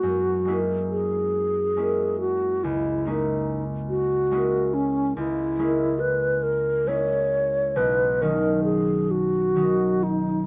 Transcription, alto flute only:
X:1
M:12/8
L:1/8
Q:3/8=46
K:F#mix
V:1 name="Alto flute"
F2 G3 F E D z F2 C | E2 B A c2 B A G F2 D |]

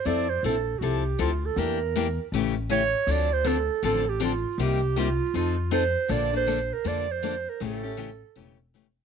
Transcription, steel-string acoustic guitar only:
X:1
M:4/4
L:1/16
Q:"Swing" 1/4=159
K:Bblyd
V:1 name="Steel-string acoustic guitar"
[F,CEA]2 z2 [F,CEA] z3 [F,CEA]2 z2 [F,CEA] z3 | [E,B,DG]2 z2 [E,B,DG] z3 [^C,E,A,^CG]2 z2 [C,E,A,CG] z3 | [D,F,CDA]2 z2 [D,F,CDA] z3 [D,F,CDA]2 z2 [D,F,CDA] z3 | [C,G,B,_EG]2 z2 [C,G,B,EG] z3 [F,CEA]2 z2 [F,CEA] z3 |
[D,F,B,DA]2 [B,DA]2 [D,F,B,DA] z3 [D,F,B,DA]2 z2 [D,F,B,DA] z3 | [^C,E,A,^CG]2 [A,CG]2 [C,E,A,CG] z3 [C,E,A,CG]2 z2 [C,E,A,CG] z3 |]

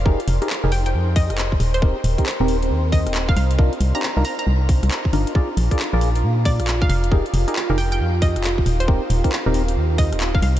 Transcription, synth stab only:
X:1
M:4/4
L:1/16
Q:"Swing 16ths" 1/4=136
K:Eb
V:1 name="Synth stab"
[EGAB] z2 [EGAB] z [EGAB] z8 z2 | [CEGB] z2 [CEGB] z [CEGB]2 z8 z | [DEFB] z2 [DEFG] z [DEFB] z8 [DEFB]2 | [FABd] z2 [FABd] z [FABd]2 z8 z |
[EGAB] z2 [EGAB] z [EGAB] z8 z2 | [CEGB] z2 [CEGB] z [CEGB]2 z8 z |]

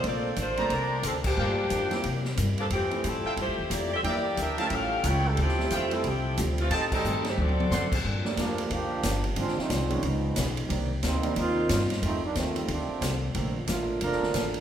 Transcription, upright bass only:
X:1
M:4/4
L:1/8
Q:"Swing" 1/4=180
K:Dm
V:1 name="Upright bass" clef=bass
B,,,2 A,,,2 C,,2 D,,2 | G,,2 F,,2 C,2 G,,2 | F,,2 A,, z (3G,, F,, E,, F,,2 | E,,2 D,,2 A,,,2 ^C,,2 |
D,,2 F,,2 C,,2 D,,2 | A,,2 G,,2 D,,2 ^F,,2 | [K:Gm] G,,2 F,,2 D,,2 G,,,2 | _A,,, z C,,2 ^C,,2 =B,,,2 |
C,,2 D,,2 E,,2 G,,2 | F,, z E,,2 D,, z C,,2 | B,,,2 A,,,2 F,,, z A,,,2 |]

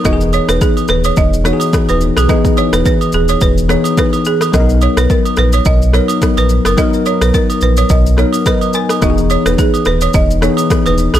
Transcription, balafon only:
X:1
M:4/4
L:1/16
Q:"Swing 16ths" 1/4=107
K:Elyd
V:1 name="Balafon"
d z c B G z B c d z c z2 B z G | d z c B B z G c B z c z B z G z | d z c B A z B c d z c z2 B z A | d z c B A z B c d z c z B z A z |
d z c B G z B c d z c z2 B z G |]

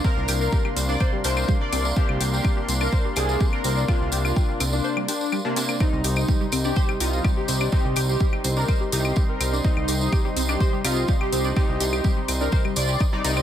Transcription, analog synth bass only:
X:1
M:4/4
L:1/16
Q:1/4=125
K:Cm
V:1 name="Analog synth bass" clef=bass
z C,, C,,2 z2 C,,2 z2 C,,2 z2 C,,2 | z C,, C,,2 z2 C,,2 z2 C,,2 z2 C,,2 | z C,, C,,2 z2 C,,2 z8 | z C,, C,,2 z2 C,,2 z2 C,,2 z2 C,,2 |
z C,, C,,2 z2 C,,2 z2 C,,2 z2 C,,2 | z C,, C,,2 z2 C,,2 z2 C,,2 z2 C,,2 | z C,, C,,2 z2 C,,2 z2 C,,2 z2 C,,2 |]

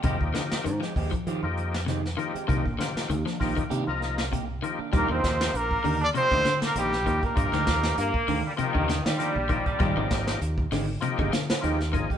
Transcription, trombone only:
X:1
M:4/4
L:1/16
Q:"Swing 16ths" 1/4=98
K:Cm
V:1 name="Trombone"
z16 | z16 | B, C3 B,3 D C3 B, G,3 B,- | B,6- B, z8 z |
z16 |]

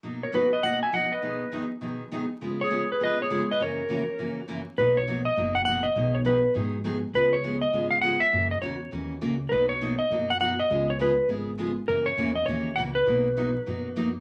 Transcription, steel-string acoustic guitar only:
X:1
M:4/4
L:1/8
Q:"Swing" 1/4=203
K:B
V:1 name="Steel-string acoustic guitar"
[B,,F,A,DF] z [B,,F,A,DF] z [B,,F,A,DF] z [B,,F,A,DF] z | [B,,D,F,B,DG] z [B,,D,F,B,DG] z [B,,D,F,B,DG] z [B,,D,F,B,DG] z | [C,G,B,^EG] z [C,G,B,EG] z [C,G,B,EG] z [C,G,B,EG] z | [F,,C,E,A,CF] z [F,,C,E,A,CF] z [F,,C,E,A,CF] z [F,,C,E,A,CF] z |
[B,,F,A,DF] z [B,,F,A,DF] z [B,,F,A,DF] z [B,,F,A,DF] z | [B,,D,F,B,DG] z [B,,D,F,B,DG] z [B,,D,F,B,DG] z [B,,D,F,B,DG] z | [C,G,B,^EG] z [C,G,B,EG] z [C,G,B,EG] z [C,G,B,EG] z | [C,E,A,CF] z [C,E,A,CF] z [C,E,A,CF] z [C,E,A,CF] z |
[B,,F,A,DF] z [B,,F,A,DF] z [B,,F,A,DF] z [B,,F,A,DF] z | [C,G,B,^EG] z [C,G,B,EG] z [C,G,B,EG] z [C,G,B,EG] z | [C,E,A,CF] z [C,E,A,CF] z [C,E,A,CF] z [C,E,A,CF] z | [B,,F,A,DF] z [B,,F,A,DF] z [B,,F,A,DF] z [B,,F,A,DF] z |]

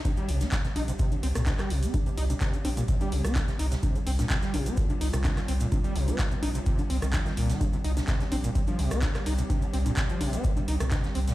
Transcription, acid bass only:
X:1
M:4/4
L:1/16
Q:1/4=127
K:Cm
V:1 name="Acid bass" clef=bass
C, G, C, C C, C, E C, C, E, C B,, C, G, C, C | C, C, E C, C, E, C B,, C, G, C, C C, C, E C, | C, E, C B,, C, G, C, C C, C, E C, C, E, C B,, | C, G, C, C C, C, E C, C, E, C E, F, E, B,, E, |
C, C, E C, C, E, C B,, C, F, C, C C, C, E C, | C, E, C B,, C, F, C, C C, C, E C, C, E, C B,, |]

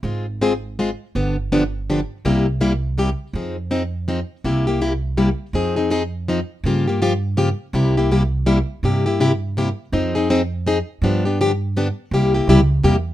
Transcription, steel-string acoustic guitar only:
X:1
M:3/4
L:1/16
Q:"Swing" 1/4=164
K:Fm
V:1 name="Steel-string acoustic guitar"
[A,CFA]2 z2 [A,CFA] z3 [A,CFA] z3 | [=D,F,=B,=DG]2 z2 [D,F,B,DG] z3 [D,F,B,DG] z3 | [C,G,B,=EG]2 z2 [C,G,B,EG] z3 [C,G,B,EG] z3 | [F,CEA]2 z2 [F,CEA] z3 [F,CEA] z3 |
[K:Cphr] [C,G,B,=EG]2 [B,EG]2 [C,G,B,EG] z3 [C,G,B,EG] z3 | [F,CEA]2 [CEA]2 [F,CEA] z3 [F,CEA] z3 | [D,F,B,FG]2 [B,FG]2 [D,F,B,FG] z3 [D,F,B,FG] z3 | [C,G,B,=EG]2 [B,EG]2 [C,G,B,EG] z3 [C,G,B,EG] z3 |
[C,G,B,=EG]2 [B,EG]2 [C,G,B,EG] z3 [C,G,B,EG] z3 | [F,CEA]2 [CEA]2 [F,CEA] z3 [F,CEA] z3 | [=D,F,=B,=DG]2 [B,DG]2 [D,F,B,DG] z3 [D,F,B,DG] z3 | [C,G,B,=EG]2 [B,EG]2 [C,G,B,EG] z3 [C,G,B,EG] z3 |]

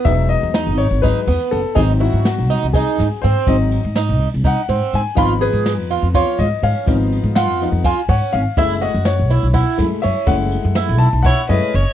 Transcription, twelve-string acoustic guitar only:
X:1
M:7/8
L:1/8
Q:1/4=123
K:G#phr
V:1 name="Twelve-string acoustic guitar"
B, z D2 D B,2 | D F2 D D2 ^B,- | ^B, z D2 D B,2 | ^E G2 E E2 C- |
C z ^E2 E C2 | E F2 E E2 C- | C z E2 E C2 |]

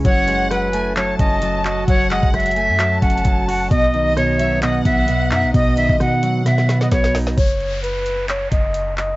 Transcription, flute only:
X:1
M:4/4
L:1/16
Q:1/4=131
K:F#dor
V:1 name="Flute"
c4 B4 c2 d4 d2 | c2 d2 e6 f4 f2 | d4 c4 d2 e4 e2 | d2 e2 f4 e3 d c4 |
c4 B4 c2 d4 d2 |]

